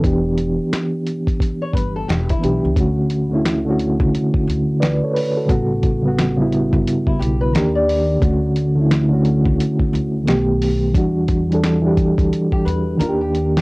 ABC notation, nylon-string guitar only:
X:1
M:4/4
L:1/16
Q:"Swing 16ths" 1/4=88
K:D
V:1 name="Nylon-string guitar"
z8 z c B A G E3 | z16 | z8 z E G B ^A d3 | z16 |
z8 z G B2 ^A G3 |]